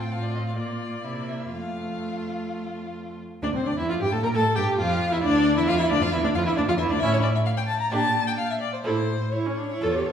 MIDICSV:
0, 0, Header, 1, 5, 480
1, 0, Start_track
1, 0, Key_signature, -1, "major"
1, 0, Tempo, 461538
1, 1085, Tempo, 478088
1, 1569, Time_signature, 4, 2, 24, 8
1, 3484, Key_signature, -1, "minor"
1, 3485, Tempo, 446761
1, 7805, Tempo, 470219
1, 10526, End_track
2, 0, Start_track
2, 0, Title_t, "Violin"
2, 0, Program_c, 0, 40
2, 9, Note_on_c, 0, 79, 54
2, 129, Note_on_c, 0, 77, 60
2, 144, Note_off_c, 0, 79, 0
2, 243, Note_on_c, 0, 74, 56
2, 259, Note_off_c, 0, 77, 0
2, 362, Note_on_c, 0, 75, 50
2, 378, Note_off_c, 0, 74, 0
2, 480, Note_off_c, 0, 75, 0
2, 487, Note_on_c, 0, 77, 53
2, 591, Note_off_c, 0, 77, 0
2, 597, Note_on_c, 0, 74, 58
2, 1327, Note_on_c, 0, 76, 55
2, 1342, Note_off_c, 0, 74, 0
2, 1561, Note_off_c, 0, 76, 0
2, 1567, Note_on_c, 0, 77, 56
2, 2981, Note_off_c, 0, 77, 0
2, 3487, Note_on_c, 0, 74, 85
2, 3535, Note_off_c, 0, 74, 0
2, 3626, Note_on_c, 0, 72, 67
2, 3733, Note_on_c, 0, 74, 73
2, 3750, Note_off_c, 0, 72, 0
2, 3857, Note_off_c, 0, 74, 0
2, 3873, Note_on_c, 0, 76, 59
2, 3980, Note_off_c, 0, 76, 0
2, 3987, Note_on_c, 0, 77, 77
2, 4034, Note_off_c, 0, 77, 0
2, 4128, Note_on_c, 0, 79, 77
2, 4228, Note_on_c, 0, 81, 85
2, 4244, Note_off_c, 0, 79, 0
2, 4347, Note_off_c, 0, 81, 0
2, 4359, Note_on_c, 0, 82, 84
2, 4404, Note_off_c, 0, 82, 0
2, 4460, Note_on_c, 0, 81, 93
2, 4686, Note_off_c, 0, 81, 0
2, 4693, Note_on_c, 0, 79, 80
2, 4779, Note_off_c, 0, 79, 0
2, 4942, Note_on_c, 0, 77, 75
2, 5310, Note_on_c, 0, 76, 70
2, 5326, Note_off_c, 0, 77, 0
2, 5402, Note_off_c, 0, 76, 0
2, 5409, Note_on_c, 0, 74, 96
2, 5770, Note_off_c, 0, 74, 0
2, 5783, Note_on_c, 0, 76, 78
2, 5831, Note_off_c, 0, 76, 0
2, 5887, Note_on_c, 0, 77, 102
2, 6005, Note_off_c, 0, 77, 0
2, 6012, Note_on_c, 0, 76, 93
2, 6129, Note_off_c, 0, 76, 0
2, 6135, Note_on_c, 0, 74, 97
2, 6264, Note_on_c, 0, 77, 92
2, 6280, Note_off_c, 0, 74, 0
2, 6368, Note_on_c, 0, 76, 89
2, 6384, Note_off_c, 0, 77, 0
2, 6491, Note_off_c, 0, 76, 0
2, 6503, Note_on_c, 0, 74, 84
2, 6549, Note_off_c, 0, 74, 0
2, 6613, Note_on_c, 0, 77, 90
2, 6661, Note_off_c, 0, 77, 0
2, 6738, Note_on_c, 0, 76, 73
2, 6849, Note_off_c, 0, 76, 0
2, 6856, Note_on_c, 0, 74, 83
2, 6903, Note_off_c, 0, 74, 0
2, 6981, Note_on_c, 0, 77, 87
2, 7026, Note_off_c, 0, 77, 0
2, 7081, Note_on_c, 0, 76, 82
2, 7130, Note_off_c, 0, 76, 0
2, 7209, Note_on_c, 0, 74, 85
2, 7321, Note_on_c, 0, 76, 110
2, 7337, Note_off_c, 0, 74, 0
2, 7443, Note_off_c, 0, 76, 0
2, 7458, Note_on_c, 0, 73, 88
2, 7503, Note_off_c, 0, 73, 0
2, 7561, Note_on_c, 0, 74, 90
2, 7610, Note_off_c, 0, 74, 0
2, 7697, Note_on_c, 0, 76, 83
2, 7743, Note_off_c, 0, 76, 0
2, 7807, Note_on_c, 0, 77, 92
2, 7852, Note_off_c, 0, 77, 0
2, 7924, Note_on_c, 0, 79, 87
2, 7969, Note_off_c, 0, 79, 0
2, 8027, Note_on_c, 0, 81, 92
2, 8146, Note_off_c, 0, 81, 0
2, 8163, Note_on_c, 0, 82, 91
2, 8274, Note_off_c, 0, 82, 0
2, 8288, Note_on_c, 0, 81, 107
2, 8628, Note_off_c, 0, 81, 0
2, 8640, Note_on_c, 0, 79, 87
2, 8684, Note_off_c, 0, 79, 0
2, 8752, Note_on_c, 0, 77, 83
2, 8864, Note_off_c, 0, 77, 0
2, 8876, Note_on_c, 0, 76, 80
2, 8921, Note_off_c, 0, 76, 0
2, 8982, Note_on_c, 0, 74, 79
2, 9100, Note_off_c, 0, 74, 0
2, 9108, Note_on_c, 0, 72, 71
2, 9156, Note_off_c, 0, 72, 0
2, 9218, Note_on_c, 0, 72, 88
2, 9708, Note_on_c, 0, 73, 76
2, 9723, Note_off_c, 0, 72, 0
2, 10526, Note_off_c, 0, 73, 0
2, 10526, End_track
3, 0, Start_track
3, 0, Title_t, "Violin"
3, 0, Program_c, 1, 40
3, 134, Note_on_c, 1, 65, 50
3, 594, Note_off_c, 1, 65, 0
3, 598, Note_on_c, 1, 65, 43
3, 1086, Note_on_c, 1, 64, 41
3, 1101, Note_off_c, 1, 65, 0
3, 1563, Note_off_c, 1, 64, 0
3, 1569, Note_on_c, 1, 65, 46
3, 3244, Note_off_c, 1, 65, 0
3, 3480, Note_on_c, 1, 62, 77
3, 3530, Note_off_c, 1, 62, 0
3, 3606, Note_on_c, 1, 60, 55
3, 3726, Note_on_c, 1, 62, 60
3, 3742, Note_off_c, 1, 60, 0
3, 3847, Note_off_c, 1, 62, 0
3, 3854, Note_on_c, 1, 64, 68
3, 3972, Note_off_c, 1, 64, 0
3, 3978, Note_on_c, 1, 65, 82
3, 4028, Note_off_c, 1, 65, 0
3, 4098, Note_on_c, 1, 67, 63
3, 4212, Note_off_c, 1, 67, 0
3, 4218, Note_on_c, 1, 69, 65
3, 4267, Note_off_c, 1, 69, 0
3, 4343, Note_on_c, 1, 70, 76
3, 4391, Note_off_c, 1, 70, 0
3, 4462, Note_on_c, 1, 69, 80
3, 4548, Note_off_c, 1, 69, 0
3, 4696, Note_on_c, 1, 67, 86
3, 4930, Note_off_c, 1, 67, 0
3, 4937, Note_on_c, 1, 65, 81
3, 5290, Note_off_c, 1, 65, 0
3, 5296, Note_on_c, 1, 64, 81
3, 5347, Note_off_c, 1, 64, 0
3, 5424, Note_on_c, 1, 62, 89
3, 5771, Note_off_c, 1, 62, 0
3, 5778, Note_on_c, 1, 64, 81
3, 5903, Note_on_c, 1, 65, 94
3, 5919, Note_off_c, 1, 64, 0
3, 6016, Note_off_c, 1, 65, 0
3, 6022, Note_on_c, 1, 64, 71
3, 6069, Note_off_c, 1, 64, 0
3, 6143, Note_on_c, 1, 62, 80
3, 6263, Note_on_c, 1, 65, 78
3, 6279, Note_off_c, 1, 62, 0
3, 6369, Note_off_c, 1, 65, 0
3, 6376, Note_on_c, 1, 64, 81
3, 6423, Note_off_c, 1, 64, 0
3, 6503, Note_on_c, 1, 62, 76
3, 6549, Note_off_c, 1, 62, 0
3, 6621, Note_on_c, 1, 65, 89
3, 6735, Note_off_c, 1, 65, 0
3, 6744, Note_on_c, 1, 64, 72
3, 6789, Note_off_c, 1, 64, 0
3, 6855, Note_on_c, 1, 62, 90
3, 6902, Note_off_c, 1, 62, 0
3, 6980, Note_on_c, 1, 65, 82
3, 7026, Note_off_c, 1, 65, 0
3, 7094, Note_on_c, 1, 64, 70
3, 7216, Note_on_c, 1, 62, 77
3, 7232, Note_off_c, 1, 64, 0
3, 7331, Note_off_c, 1, 62, 0
3, 7342, Note_on_c, 1, 64, 78
3, 7555, Note_off_c, 1, 64, 0
3, 8272, Note_on_c, 1, 67, 68
3, 8492, Note_off_c, 1, 67, 0
3, 9218, Note_on_c, 1, 69, 62
3, 9452, Note_off_c, 1, 69, 0
3, 10214, Note_on_c, 1, 69, 65
3, 10432, Note_off_c, 1, 69, 0
3, 10526, End_track
4, 0, Start_track
4, 0, Title_t, "Viola"
4, 0, Program_c, 2, 41
4, 123, Note_on_c, 2, 60, 49
4, 581, Note_off_c, 2, 60, 0
4, 587, Note_on_c, 2, 58, 41
4, 1070, Note_off_c, 2, 58, 0
4, 1089, Note_on_c, 2, 58, 45
4, 1580, Note_on_c, 2, 57, 51
4, 1595, Note_off_c, 2, 58, 0
4, 3283, Note_off_c, 2, 57, 0
4, 3493, Note_on_c, 2, 62, 77
4, 3540, Note_off_c, 2, 62, 0
4, 3623, Note_on_c, 2, 60, 59
4, 3737, Note_off_c, 2, 60, 0
4, 3742, Note_on_c, 2, 62, 58
4, 3790, Note_off_c, 2, 62, 0
4, 3871, Note_on_c, 2, 64, 67
4, 3990, Note_on_c, 2, 65, 76
4, 4006, Note_off_c, 2, 64, 0
4, 4108, Note_off_c, 2, 65, 0
4, 4117, Note_on_c, 2, 67, 73
4, 4163, Note_off_c, 2, 67, 0
4, 4233, Note_on_c, 2, 69, 75
4, 4356, Note_on_c, 2, 70, 69
4, 4372, Note_off_c, 2, 69, 0
4, 4463, Note_on_c, 2, 69, 84
4, 4479, Note_off_c, 2, 70, 0
4, 4696, Note_on_c, 2, 67, 74
4, 4713, Note_off_c, 2, 69, 0
4, 4943, Note_on_c, 2, 65, 86
4, 4959, Note_off_c, 2, 67, 0
4, 5309, Note_on_c, 2, 64, 73
4, 5325, Note_off_c, 2, 65, 0
4, 5425, Note_on_c, 2, 62, 88
4, 5441, Note_off_c, 2, 64, 0
4, 5784, Note_on_c, 2, 64, 75
4, 5800, Note_off_c, 2, 62, 0
4, 5903, Note_off_c, 2, 64, 0
4, 5909, Note_on_c, 2, 65, 97
4, 5955, Note_off_c, 2, 65, 0
4, 6028, Note_on_c, 2, 64, 78
4, 6141, Note_on_c, 2, 62, 76
4, 6157, Note_off_c, 2, 64, 0
4, 6258, Note_off_c, 2, 62, 0
4, 6269, Note_on_c, 2, 65, 80
4, 6380, Note_off_c, 2, 65, 0
4, 6387, Note_on_c, 2, 64, 71
4, 6500, Note_on_c, 2, 62, 78
4, 6516, Note_off_c, 2, 64, 0
4, 6611, Note_off_c, 2, 62, 0
4, 6618, Note_on_c, 2, 65, 79
4, 6665, Note_off_c, 2, 65, 0
4, 6728, Note_on_c, 2, 64, 70
4, 6847, Note_off_c, 2, 64, 0
4, 6862, Note_on_c, 2, 62, 92
4, 6908, Note_off_c, 2, 62, 0
4, 6974, Note_on_c, 2, 65, 84
4, 7021, Note_off_c, 2, 65, 0
4, 7097, Note_on_c, 2, 64, 75
4, 7214, Note_on_c, 2, 62, 65
4, 7230, Note_off_c, 2, 64, 0
4, 7330, Note_off_c, 2, 62, 0
4, 7338, Note_on_c, 2, 61, 81
4, 7554, Note_off_c, 2, 61, 0
4, 8276, Note_on_c, 2, 62, 71
4, 8494, Note_off_c, 2, 62, 0
4, 9224, Note_on_c, 2, 64, 64
4, 9455, Note_off_c, 2, 64, 0
4, 9722, Note_on_c, 2, 64, 70
4, 9855, Note_on_c, 2, 61, 63
4, 9870, Note_off_c, 2, 64, 0
4, 9974, Note_on_c, 2, 62, 64
4, 9989, Note_off_c, 2, 61, 0
4, 10091, Note_off_c, 2, 62, 0
4, 10108, Note_on_c, 2, 64, 68
4, 10218, Note_on_c, 2, 65, 76
4, 10233, Note_off_c, 2, 64, 0
4, 10355, Note_on_c, 2, 67, 65
4, 10370, Note_off_c, 2, 65, 0
4, 10466, Note_on_c, 2, 69, 67
4, 10482, Note_off_c, 2, 67, 0
4, 10526, Note_off_c, 2, 69, 0
4, 10526, End_track
5, 0, Start_track
5, 0, Title_t, "Cello"
5, 0, Program_c, 3, 42
5, 0, Note_on_c, 3, 45, 48
5, 608, Note_on_c, 3, 46, 44
5, 623, Note_off_c, 3, 45, 0
5, 1085, Note_on_c, 3, 48, 42
5, 1100, Note_off_c, 3, 46, 0
5, 1560, Note_off_c, 3, 48, 0
5, 1566, Note_on_c, 3, 41, 37
5, 3242, Note_off_c, 3, 41, 0
5, 3480, Note_on_c, 3, 38, 71
5, 3530, Note_off_c, 3, 38, 0
5, 3594, Note_on_c, 3, 36, 55
5, 3647, Note_off_c, 3, 36, 0
5, 3722, Note_on_c, 3, 38, 59
5, 3773, Note_off_c, 3, 38, 0
5, 3846, Note_on_c, 3, 40, 61
5, 3968, Note_on_c, 3, 41, 64
5, 3984, Note_off_c, 3, 40, 0
5, 4088, Note_off_c, 3, 41, 0
5, 4094, Note_on_c, 3, 43, 67
5, 4144, Note_off_c, 3, 43, 0
5, 4213, Note_on_c, 3, 45, 74
5, 4264, Note_off_c, 3, 45, 0
5, 4334, Note_on_c, 3, 46, 71
5, 4450, Note_off_c, 3, 46, 0
5, 4456, Note_on_c, 3, 45, 86
5, 4542, Note_off_c, 3, 45, 0
5, 4703, Note_on_c, 3, 43, 72
5, 4789, Note_off_c, 3, 43, 0
5, 4938, Note_on_c, 3, 41, 83
5, 5298, Note_on_c, 3, 40, 81
5, 5314, Note_off_c, 3, 41, 0
5, 5416, Note_off_c, 3, 40, 0
5, 5423, Note_on_c, 3, 38, 77
5, 5779, Note_on_c, 3, 40, 84
5, 5796, Note_off_c, 3, 38, 0
5, 5895, Note_on_c, 3, 41, 84
5, 5911, Note_off_c, 3, 40, 0
5, 6014, Note_on_c, 3, 40, 74
5, 6030, Note_off_c, 3, 41, 0
5, 6117, Note_off_c, 3, 40, 0
5, 6124, Note_on_c, 3, 38, 86
5, 6174, Note_off_c, 3, 38, 0
5, 6248, Note_on_c, 3, 41, 78
5, 6298, Note_off_c, 3, 41, 0
5, 6374, Note_on_c, 3, 40, 79
5, 6485, Note_on_c, 3, 38, 70
5, 6501, Note_off_c, 3, 40, 0
5, 6598, Note_off_c, 3, 38, 0
5, 6605, Note_on_c, 3, 41, 84
5, 6715, Note_on_c, 3, 40, 65
5, 6731, Note_off_c, 3, 41, 0
5, 6843, Note_off_c, 3, 40, 0
5, 6848, Note_on_c, 3, 38, 90
5, 6897, Note_off_c, 3, 38, 0
5, 6959, Note_on_c, 3, 41, 81
5, 7073, Note_off_c, 3, 41, 0
5, 7080, Note_on_c, 3, 40, 72
5, 7201, Note_off_c, 3, 40, 0
5, 7209, Note_on_c, 3, 38, 75
5, 7256, Note_off_c, 3, 38, 0
5, 7319, Note_on_c, 3, 45, 74
5, 7719, Note_off_c, 3, 45, 0
5, 8267, Note_on_c, 3, 46, 77
5, 8663, Note_off_c, 3, 46, 0
5, 9222, Note_on_c, 3, 45, 58
5, 9636, Note_off_c, 3, 45, 0
5, 10216, Note_on_c, 3, 40, 70
5, 10526, Note_off_c, 3, 40, 0
5, 10526, End_track
0, 0, End_of_file